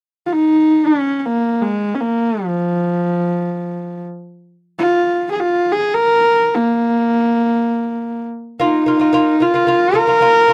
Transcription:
0.26 F4
0.33 D#4
0.86 C#4
1.19 C#4
1.26 A#3
1.62 G#3
1.95 C#4
2.01 A#3
2.45 F3
4.79 F4
5.32 G#4
5.40 F4
5.72 G#4
5.95 A#4
6.55 A#3
8.60 A#3 D#4 F4
8.86 A#3 F4
9.00 A#3 F4
9.13 A#3 F4
9.40 A#3 F4
9.54 A#3 F4
9.67 A#3 F4
9.93 A#3 F4 A#4
10.07 A#3 F4
10.21 A#3 F4
10.48 A#3 F4

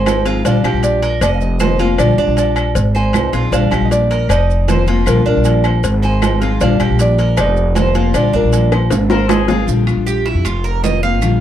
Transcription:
Already playing: G#1 C5 G#5
0.06 F#3 C4 D#4 G#4, cowbell, low timbale, low agogo, claves, maracas
0.25 F#3 C4 D#4 F4 G#4, cowbell, maracas
0.44 A#1 D3 G3 D4 F4 F5, cowbell, low agogo, maracas
0.64 A#1 G3 D4 F4 G4, cowbell, low agogo, claves, maracas
0.73 A#1
0.83 D5, cowbell, low timbale, maracas
1.02 A#4, cowbell, low agogo, maracas
1.21 F1 D5 D#5, muted steel-string acoustic guitar stroke, cowbell, low agogo, claves, maracas
1.34 F5
1.41 D#5, maracas
1.60 D#3 A#3 C4 F4 C5, cowbell, low timbale, low agogo, maracas
1.79 A#3 C4 F4, cowbell, low agogo, maracas
1.98 A#1 D3 G3 D4 F4 D5, cowbell, low agogo, claves, maracas
2.17 A#1 G3 D4 F4, maracas
2.27 A#1
2.37 D5, cowbell, low timbale, low agogo, maracas
2.56 cowbell, low agogo, claves, maracas
2.75 G#1, muted steel-string acoustic guitar stroke, cowbell, maracas
2.95 C5 G#5, low agogo, maracas
3.13 C2 F#3 C4 D#4 G#4, cowbell, low timbale, low agogo, claves, maracas
3.32 A#1 F#3 C4 D#4 F4 G#4, cowbell, maracas
3.51 A#1 D3 G3 D4 F4 F5, cowbell, low agogo, maracas
3.71 A#1 G3 D4 F4 G4, cowbell, low agogo, claves, maracas
3.81 A#1
3.85 D#5
3.91 D5, cowbell, low timbale, maracas
4.11 A#4, cowbell, low agogo, maracas
4.29 F1 D#4 D5, muted steel-string acoustic guitar stroke, cowbell, low agogo, claves, maracas
4.50 maracas
4.68 D#3 A#3 C4 F4 C5, cowbell, low timbale, low agogo, maracas
4.86 A#3 C4 F4, cowbell, low agogo, maracas
5.06 A#1 D3 G3 D4 F4 A#4, cowbell, low agogo, claves, maracas
5.25 A#1 G3 D4 F4 A#4, maracas
5.36 A#1
5.44 cowbell, low timbale, low agogo, maracas
5.64 C5, cowbell, low agogo, claves, maracas
5.84 G#1, muted steel-string acoustic guitar stroke, cowbell, maracas
6.02 C5 G#5, low agogo, maracas
6.22 F#3 C4 D#4 G#4, cowbell, low timbale, low agogo, claves, maracas
6.41 F#3 C4 D#4 F4 G#4, cowbell, maracas
6.61 A#1 D3 G3 D4 F4 F5, cowbell, low agogo, maracas
6.80 A#1 G3 D4 F4 G4, cowbell, low agogo, claves, maracas
6.90 A#1
6.99 D5, cowbell, low timbale, maracas
7.18 A#4, cowbell, low agogo, maracas
7.37 F1 D#4 D5, muted steel-string acoustic guitar stroke, cowbell, low agogo, claves, maracas
7.57 maracas
7.75 D#3 A#3 C4 F4 C5, cowbell, low timbale, low agogo, maracas
7.95 A#3 C4 F4, cowbell, low agogo, maracas
8.14 A#1 D3 G3 D4 F4 D5, cowbell, low agogo, claves, maracas
8.33 A#1 G3 D4 F4 A#4, maracas
8.43 A#1
8.53 cowbell, low timbale, low agogo, maracas
8.72 C5, cowbell, high bongo, low agogo, claves, maracas
8.90 G#1, muted steel-string acoustic guitar stroke, cowbell, high bongo, high timbale, maracas
9.10 A#4 C5, low bongo, high timbale, low agogo, maracas
9.28 F#3 C4 D#4 G#4, cowbell, low bongo, low timbale, low agogo, claves, maracas
9.48 F#3 C4 D#4 F4 G#4, cowbell, low bongo, low timbale, maracas
9.66 A#1 D3 G3 D4 F4, maracas
9.87 G3 D4 F4, high timbale, claves, maracas
9.97 A#1
10.06 G4, low timbale, maracas
10.26 E4, high timbale, maracas
10.34 F2
10.45 F1 F4, muted steel-string acoustic guitar stroke, high timbale, claves, maracas
10.64 A#4, maracas
10.83 D#3 A#3 C4 F4 D#5, high timbale, low timbale, maracas
11.03 A#3 C4 F4 F5, maracas
11.22 A#1 D3 G3 D4 F4, high timbale, claves, maracas

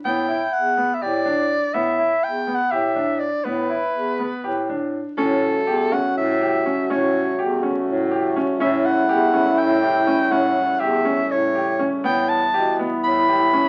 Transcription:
0.05 A2 B3 G5
0.28 E4
0.53 E2 F#5
0.77 B3
0.94 E5
1.02 A2 G4 D5
1.26 D4
1.74 A2 B3 E5
1.99 E4
2.23 E2 G5
2.47 B3
2.55 F#5
2.71 A2 G4 E5
2.96 D4
3.20 D5
3.44 A2 B3 B4
3.70 E4
3.94 E2
4.19 B3
4.44 A2 G4
4.69 D4
5.18 A2 C#3 G3 A3 C#4 F#4 A4
5.67 E2 G4
5.92 C#4 F#5
6.16 A2 E5
6.41 G4
6.66 C#4
6.90 A2 C#4 C#5
7.38 E2 G4
7.63 C#4
7.87 A2
8.11 G4
8.36 C#4
8.59 A2 C#4 E4 E5
8.86 F#5
9.09 E2 G4
9.33 C#4
9.58 A2 G5
9.82 G4
10.07 C#4
10.31 A2 C#4 F#5
10.80 E2 G4 E5
11.05 C#4
11.31 A2 C#5
11.55 G4
11.79 C#4
12.04 A2 E3 B3 E4 G5
12.29 A5
12.54 B2 G4
12.79 B3
13.04 A2 B5
13.29 G4
13.53 C#4

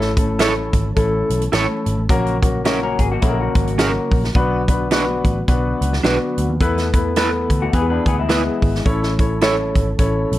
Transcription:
Already playing: A1 E3 A3 C#4 A4
0.01 snare
0.17 A3 C#4 E4 A4, kick, closed hi-hat
0.39 A3 C#4 E4 A4 C#5, snare, closed hi-hat
0.73 G#1, kick, closed hi-hat
0.96 A1 A3 C#4 E4 A4, kick, closed hi-hat
1.30 B1, closed hi-hat
1.41 closed hi-hat
1.52 A1 A3 C#4 E4 A4 C#5, snare, closed hi-hat
1.86 G#1, closed hi-hat
1.98 A1
2.09 A#1 C#3 F#3 A#3 C#4 F#4 A#4, kick, closed hi-hat
2.26 closed hi-hat
2.42 A#3 C#4 F#4 A#4, kick, closed hi-hat
2.64 A#3 C#4 E4 F#4 A#4 C#5, snare, closed hi-hat
2.83 C#4 A#4
2.99 G#1 G#4, kick, closed hi-hat
3.12 A#3 F#4
3.21 A#1 G#3 A#3 C#4 E4 F#4 A4, kick, closed hi-hat
3.28 A#4
3.40 A#3 F#4
3.55 G#1, kick, closed hi-hat
3.67 closed hi-hat
3.78 A#3 C#4 F#4 G#4 A#4, snare, closed hi-hat
3.85 A#4
4.12 A#1, kick, open hi-hat
4.24 snare
4.35 B1 D3 B3 D4 F#4 B4, kick, closed hi-hat
4.68 B3 D4 F#4 B4, kick, closed hi-hat
4.91 B3 D4 F#4 B4, snare, closed hi-hat
5.25 A1, kick, closed hi-hat
5.48 B1 B3 D4 F#4 B4, kick, closed hi-hat
5.81 C#2, closed hi-hat
5.93 snare
6.03 B1 B3 D4 F#4 B4, snare, closed hi-hat
6.38 D2, closed hi-hat
6.49 D#2
6.61 E2 E3 A3 B3 E4 A4 B4, kick, closed hi-hat
6.78 snare, closed hi-hat
6.94 B3 E4 A4 B4, kick, closed hi-hat
7.16 B3 E4 A4 B4, snare, closed hi-hat
7.50 D2, kick, closed hi-hat
7.62 A3 F#4
7.73 E2 E3 G#3 B3 E4 G4 G#4 B4, kick, closed hi-hat
7.80 G#4
7.90 D4 B4
8.06 D2 B3 G#4, kick, closed hi-hat
8.19 G#3 E4
8.29 B3 E4 G#4 B4, snare, closed hi-hat
8.62 G#1, kick, open hi-hat
8.75 snare
8.85 A1 A3 C#4 E4 A4 C#5, kick, closed hi-hat
9.03 snare
9.19 C#4 E4 A4 C#5, kick, closed hi-hat
9.41 C#4 E4 A4 C#5, snare, closed hi-hat
9.75 G#1, kick, closed hi-hat
9.99 A1 C#4 E4 A4 C#5, kick, closed hi-hat
10.32 B1, closed hi-hat

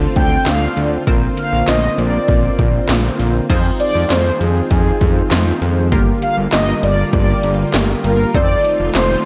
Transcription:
Already playing: D3 A3 C4 D4 F4 A4 C5
0.16 D2 G5, kick, closed hi-hat
0.46 D2 F5, snare, clap, closed hi-hat
0.77 D2 D5, closed hi-hat
1.07 A#1 D3 A#3 C4 F4 A#4 C5, kick, closed hi-hat
1.37 F5, closed hi-hat
1.53 A#1
1.68 A#1 D#5, snare, clap, closed hi-hat
1.98 A#1 D5, closed hi-hat
2.28 A#1, kick, closed hi-hat
2.59 A#1, kick, closed hi-hat
2.89 A#1, snare, clap, closed hi-hat
3.19 A#1, open hi-hat
3.49 F2 D#3 G#3 C4 D#4 F4 G#4 C5, kick, closed hi-hat, crash
3.80 D5, closed hi-hat
3.95 F2
4.10 F2 C5, snare, clap, closed hi-hat
4.40 F2 G#4, closed hi-hat
4.71 F2 G#4, kick, closed hi-hat
5.01 F2, kick, closed hi-hat
5.31 F2, snare, clap, closed hi-hat
5.62 F2, closed hi-hat
5.92 G1 D3 G3 A#3 F4 G4 A#4, kick, closed hi-hat
6.22 F5, closed hi-hat
6.37 G1
6.52 G1 D#5, snare, clap, closed hi-hat
6.83 G1 D5, closed hi-hat
7.13 G1 D5, kick, closed hi-hat
7.43 G1, closed hi-hat
7.74 G1, snare, clap, closed hi-hat
8.04 G1 A#4, closed hi-hat
8.34 F1 D#3 A3 C4 D#4 F4 A4 C5 D5, kick, closed hi-hat
8.64 closed hi-hat
8.80 F1
8.95 F1 C5, snare, clap, closed hi-hat

